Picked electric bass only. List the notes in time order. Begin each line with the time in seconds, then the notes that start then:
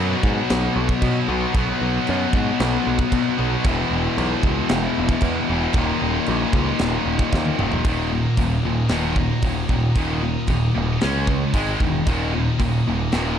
Already playing: F#2
0.23 G#2
0.50 B1
0.76 B1
1.02 B2
1.28 B1
1.54 B1
1.81 B1
2.09 F#2
2.34 G#2
2.60 B1
2.87 B1
3.13 B2
3.39 B1
3.65 E1
3.91 E1
4.17 B1
4.43 C#2
4.70 E1
4.98 E1
5.22 E2
5.50 E1
5.74 D#1
6.02 D#1
6.28 A#1
6.54 C#2
6.80 D#1
7.05 D#1
7.33 D#2
7.59 D#1
7.85 D#1
8.38 D#1
8.63 D#1
8.89 D#1
9.43 D#1
9.69 D#1
9.95 D#1
10.48 D#1
10.76 D#1
11.03 C#2
11.54 G#1
11.80 E1
12.07 D#1
12.60 D#1
12.88 D#1
13.14 D#1